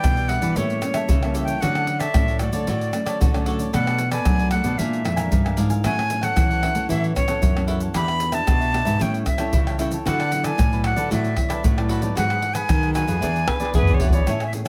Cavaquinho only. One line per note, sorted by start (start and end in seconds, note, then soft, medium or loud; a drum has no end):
0.00 0.16 G4 medium
0.00 0.15 B4 medium
0.00 0.15 D5 medium
0.16 0.29 G4 soft
0.16 0.29 B4 soft
0.16 0.29 D5 medium
0.29 0.42 E4 medium
0.29 0.42 G4 soft
0.29 0.42 B4 medium
0.29 0.40 D5 medium
0.41 0.55 G4 medium
0.41 0.55 B4 medium
0.41 0.54 D5 medium
0.56 0.81 G4 medium
0.56 0.82 A4 medium
0.56 0.82 C#5 medium
0.56 0.83 E5 medium
0.82 muted cavaquinho stroke soft
0.94 1.08 A4 medium
0.94 1.08 C#5 medium
0.94 1.07 E5 medium
1.09 1.21 G4 soft
1.09 1.22 A4 medium
1.09 1.22 C#5 soft
1.09 1.21 E5 soft
1.23 1.34 A4 soft
1.23 1.35 C#5 soft
1.23 1.35 E5 soft
1.34 1.47 G4 medium
1.34 1.48 A4 medium
1.34 1.48 C#5 medium
1.34 1.46 E5 medium
1.47 1.61 A4 soft
1.47 1.61 C#5 soft
1.47 1.60 E5 medium
1.61 1.74 F#4 medium
1.61 1.74 A4 medium
1.61 1.75 C#5 medium
1.61 1.74 D5 medium
1.75 1.87 A4 soft
1.75 1.87 C#5 soft
1.75 1.87 D5 medium
1.87 muted cavaquinho stroke soft
1.99 2.27 A4 medium
1.99 2.27 C#5 medium
1.99 2.26 D5 medium
2.28 2.40 A4 soft
2.28 2.41 C#5 soft
2.28 2.40 D5 soft
2.40 2.53 F#4 medium
2.40 2.53 A4 soft
2.40 2.53 C#5 medium
2.40 2.52 D5 medium
2.53 2.67 A4 medium
2.53 2.66 C#5 medium
2.53 2.66 D5 medium
2.67 2.93 F#4 medium
2.67 2.93 A4 medium
2.67 2.94 C#5 medium
2.67 2.94 D5 medium
2.94 muted cavaquinho stroke soft
3.06 3.20 A4 medium
3.06 3.19 C#5 medium
3.06 3.18 D5 medium
3.20 3.32 F#4 soft
3.20 3.33 A4 soft
3.20 3.33 C#5 medium
3.20 3.33 D5 medium
3.34 3.46 A4 soft
3.34 3.47 C#5 soft
3.34 3.46 D5 soft
3.46 3.58 F#4 medium
3.46 3.59 A4 medium
3.46 3.59 C#5 medium
3.46 3.58 D5 medium
3.59 3.73 A4 soft
3.59 3.72 C#5 soft
3.59 3.71 D5 soft
3.73 3.85 D4 medium
3.73 3.86 A4 medium
3.73 3.86 B4 medium
3.73 3.86 D5 medium
3.87 3.99 A4 soft
3.87 3.99 B4 soft
3.87 3.99 D5 soft
4.00 muted cavaquinho stroke soft
4.11 4.38 A4 soft
4.11 4.38 B4 medium
4.11 4.37 D5 medium
4.40 4.52 A4 soft
4.40 4.52 B4 soft
4.40 4.52 D5 soft
4.53 4.64 D4 medium
4.53 4.65 A4 medium
4.53 4.64 B4 medium
4.53 4.63 D5 medium
4.64 4.78 A4 medium
4.64 4.77 B4 medium
4.64 4.77 D5 medium
4.78 5.03 D4 medium
4.78 5.04 A#4 medium
4.78 5.04 F5 medium
4.78 5.05 G#5 medium
5.05 muted cavaquinho stroke soft
5.16 5.30 A#4 medium
5.16 5.30 F5 medium
5.16 5.29 G#5 medium
5.31 5.43 D4 soft
5.31 5.44 A#4 soft
5.31 5.44 F5 soft
5.31 5.43 G#5 medium
5.44 5.56 A#4 soft
5.44 5.57 F5 soft
5.44 5.57 G#5 soft
5.57 5.69 D4 medium
5.57 5.70 A#4 medium
5.57 5.70 F5 medium
5.57 5.69 G#5 medium
5.70 5.83 A#4 soft
5.70 5.83 F5 soft
5.70 5.83 G#5 soft
5.84 5.96 E4 medium
5.84 5.97 A4 medium
5.84 5.97 C#5 medium
5.84 5.97 F#5 medium
5.98 6.10 A4 soft
5.98 6.10 C#5 medium
5.98 6.10 F#5 medium
6.10 muted cavaquinho stroke soft
6.21 6.49 A4 medium
6.21 6.48 C#5 medium
6.21 6.48 F#5 medium
6.50 6.62 A4 soft
6.50 6.62 C#5 soft
6.50 6.62 F#5 soft
6.62 6.75 E4 medium
6.62 6.75 A4 medium
6.62 6.75 C#5 medium
6.62 6.73 F#5 medium
6.75 6.89 A4 medium
6.75 6.88 C#5 medium
6.75 6.88 F#5 medium
6.89 7.14 E4 medium
6.89 7.14 A4 medium
6.89 7.15 C#5 medium
6.89 7.15 F#5 medium
7.15 muted cavaquinho stroke soft
7.28 7.41 A4 medium
7.28 7.41 C#5 medium
7.28 7.41 F#5 medium
7.41 7.54 E4 medium
7.41 7.54 A4 soft
7.41 7.55 C#5 soft
7.41 7.54 F#5 soft
7.55 7.67 A4 soft
7.55 7.68 C#5 soft
7.55 7.67 F#5 medium
7.67 7.80 E4 medium
7.67 7.81 A4 medium
7.67 7.81 C#5 medium
7.67 7.79 F#5 medium
7.80 7.94 A4 soft
7.80 7.94 C#5 soft
7.80 7.93 F#5 medium
7.94 8.07 D4 medium
7.94 8.07 G4 medium
7.94 8.07 B4 medium
7.94 8.07 E5 medium
8.08 8.20 G4 soft
8.08 8.20 B4 medium
8.08 8.20 E5 soft
8.20 muted cavaquinho stroke soft
8.32 8.60 G4 medium
8.32 8.59 B4 medium
8.32 8.58 E5 medium
8.60 8.72 G4 soft
8.60 8.73 B4 soft
8.60 8.73 E5 soft
8.72 8.85 D4 medium
8.72 8.86 G4 medium
8.72 8.85 B4 medium
8.72 8.84 E5 medium
8.85 8.99 G4 medium
8.85 8.99 B4 medium
8.85 8.98 E5 medium
8.99 9.25 E4 medium
8.99 9.24 A4 medium
8.99 9.25 C#5 medium
8.99 9.26 G5 medium
9.26 muted cavaquinho stroke soft
9.38 9.52 A4 medium
9.38 9.52 C#5 medium
9.38 9.51 G5 medium
9.53 9.65 E4 soft
9.53 9.66 A4 soft
9.53 9.66 C#5 medium
9.53 9.66 G5 medium
9.67 9.79 A4 soft
9.67 9.80 C#5 soft
9.67 9.79 G5 medium
9.79 9.92 E4 medium
9.79 9.92 A4 medium
9.79 9.91 C#5 medium
9.79 9.90 G5 medium
9.93 10.05 A4 soft
9.93 10.05 C#5 soft
10.05 10.18 F#4 medium
10.05 10.18 A4 medium
10.05 10.19 B4 medium
10.05 10.18 D5 medium
10.20 10.31 A4 soft
10.20 10.31 B4 soft
10.20 10.31 D5 medium
10.31 muted cavaquinho stroke soft
10.43 10.71 A4 medium
10.43 10.70 B4 medium
10.43 10.70 D5 medium
10.72 10.83 A4 soft
10.72 10.84 B4 soft
10.72 10.84 D5 soft
10.84 10.96 F#4 medium
10.84 10.97 A4 medium
10.84 10.96 B4 medium
10.84 10.95 D5 medium
10.96 11.10 A4 medium
10.96 11.10 B4 medium
10.96 11.09 D5 medium
11.10 11.35 F#4 medium
11.10 11.36 A4 medium
11.10 11.36 B4 medium
11.10 11.36 D5 medium
11.36 muted cavaquinho stroke soft
11.49 11.63 A4 medium
11.49 11.63 B4 medium
11.49 11.62 D5 medium
11.63 11.76 F#4 soft
11.63 11.77 A4 soft
11.63 11.77 B4 medium
11.63 11.76 D5 medium
11.77 11.88 A4 soft
11.77 11.89 B4 soft
11.77 11.89 D5 soft
11.89 12.02 F#4 medium
11.89 12.02 A4 medium
11.89 12.01 B4 medium
11.89 12.00 D5 medium
12.01 12.16 A4 soft
12.01 12.15 B4 soft
12.01 12.15 D5 medium
12.15 12.28 F#4 medium
12.15 12.29 G#4 medium
12.15 12.29 B4 medium
12.15 12.28 F#5 medium
12.29 12.41 G#4 soft
12.29 12.42 B4 soft
12.29 12.42 F#5 medium
12.42 muted cavaquinho stroke soft
12.55 12.82 G#4 soft
12.55 12.81 B4 medium
12.55 12.81 F#5 medium
12.83 12.94 G#4 soft
12.83 12.95 B4 soft
12.83 12.95 F#5 soft
12.94 13.07 F#4 medium
12.94 13.08 G#4 medium
12.94 13.07 B4 medium
12.94 13.06 F#5 medium
13.07 13.21 G#4 medium
13.07 13.21 B4 medium
13.07 13.20 F#5 medium
13.21 13.46 E4 medium
13.21 13.46 G#4 medium
13.21 13.47 B4 medium
13.21 13.47 D5 medium
13.60 13.74 G#4 medium
13.60 13.74 B4 medium
13.60 13.73 D5 medium
13.74 13.87 E4 medium
13.74 13.87 G#4 soft
13.74 13.88 B4 medium
13.74 13.87 D5 medium
13.88 14.00 G#4 soft
13.88 14.01 B4 soft
13.88 14.01 D5 soft
14.01 14.13 E4 medium
14.01 14.14 G#4 medium
14.01 14.13 B4 medium
14.01 14.12 D5 medium
14.13 14.27 G#4 soft
14.13 14.27 B4 soft
14.13 14.26 D5 soft
14.27 14.40 A4 medium
14.27 14.40 C#5 medium
14.27 14.41 E5 medium
14.27 14.41 G#5 medium
14.42 14.52 C#5 soft
14.42 14.53 E5 soft
14.42 14.53 G#5 soft
14.54 muted cavaquinho stroke soft